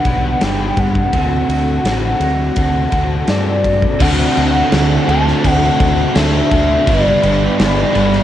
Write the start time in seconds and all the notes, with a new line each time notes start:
Already playing: G2 D3 G3 F#5
0.05 B1 B3 D4 B4, kick, ride
0.09 G3
0.40 G1 D3 G3 B3 D4 B4 G5, snare, ride
0.77 G2 G3 B3 D4 F#5, kick, ride
0.95 kick
1.13 D2 D3 A3 C4 F#4 A4, kick, ride
1.49 D2 C4 F#4, ride
1.53 A3
1.84 A1 D3 A3 C4 F#4, snare, ride
1.89 A4
2.20 D2 A3 C4 F#4, ride
2.56 D2 D3 A3 C4 F#4, kick, ride
2.60 A4
2.92 D2 A3 C4 F#4 A4, kick, ride
3.28 G2 D3 A3 C4 F#4 A4 D5, snare, ride
3.65 A3 C4 F#4, kick, ride
3.82 kick
4.00 D2 D3 A3 C4 D4 F#4 A4 F#5, kick, crash
4.36 D2 C4 F#4 A4, crash
4.71 D2 D3 C4 F#4 A4, snare, crash
5.07 D2 D3 A3 D4 F#4 A4 A5, crash
5.11 C4
5.27 snare
5.43 D2 D3 C4 F#4 A4 F#5, kick, crash
5.80 D2 C4 F#4 A4, kick, crash
6.15 D2 D3 A3 C4 D4 F#4 A4 E5, snare, crash
6.51 D2 F#4 A4, kick, crash
6.55 C4
6.86 G1 G2 D3 G3 B3 D4 D5, kick, crash
6.90 B4
7.22 G1 B3 D4 B4, crash
7.57 G1 G3 B3 D4, snare, crash
7.61 B4
7.93 G1 G2 D3 G3 B3 D4 B4, crash
8.13 snare